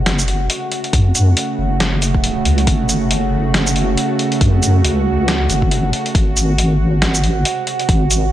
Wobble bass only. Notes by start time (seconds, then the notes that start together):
Already playing: F#1
0.93 F#2
1.58 F#1
2.45 C#2
2.67 F#1
4.41 F#2
4.85 C#2
5.50 F#1
6.15 G#1
7.89 G#1